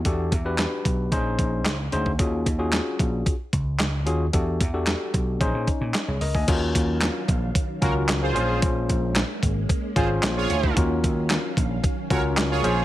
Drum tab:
CC |----------------|----------------|----------------|x---------------|
HH |x-x-x-x-x-x-x-x-|x-x-x-x-x-x-x-x-|x-x-x-x-x-x-x-o-|x-x-x-x-x-x-x-x-|
CP |----x-------x---|----x-------x---|----x-------x---|----x-------x---|
SD |----o-------o---|----o-------o---|----o-------o---|----o-------o---|
BD |o-o---o-o-o----o|o-o---o-o-o-----|o-o---o-o-o----o|o-o---o-o-o-----|

CC |----------------|----------------|
HH |x-x-x-x-x-x-x-x-|x-x-x-x-x-x-x-x-|
CP |----x-------x---|----x-------x---|
SD |----o-------o---|----o-------o---|
BD |o-o---o-o-o----o|o-o---o-o-o-----|